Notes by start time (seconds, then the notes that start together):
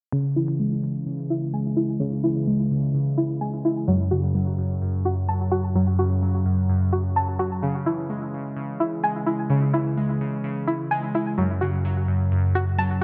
0.12 C#3
0.36 E3 E4
0.60 G#3
0.84 C#3
1.06 C#3
1.30 E4
1.53 G#3 G#5
1.77 G#3 E4
2.00 C#3
2.24 E3 E4
2.47 G#3
2.71 C#3
2.94 C#3
3.18 E4
3.41 G#3 G#5
3.64 G#3 E4
3.88 F#2 F#3
4.11 C#3 F#4
4.35 F#3
4.58 F#2
4.82 F#2
5.05 F#4
5.28 F#3 A5
5.51 F#3 F#4
5.75 F#2 F#3
5.99 C#3 F#4
6.22 F#3
6.45 F#2
6.69 F#2
6.93 F#4
7.16 F#3 A5
7.39 F#3 F#4
7.63 C#3
7.86 E3 E4
8.10 G#3
8.34 C#3
8.56 C#3
8.80 E4
9.03 G#3 G#5
9.27 G#3 E4
9.50 C#3
9.74 E3 E4
9.97 G#3
10.21 C#3
10.44 C#3
10.68 E4
10.91 G#3 G#5
11.14 G#3 E4
11.38 F#2 F#3
11.61 C#3 F#4
11.85 F#3
12.08 F#2
12.32 F#2
12.55 F#4
12.78 F#3 A5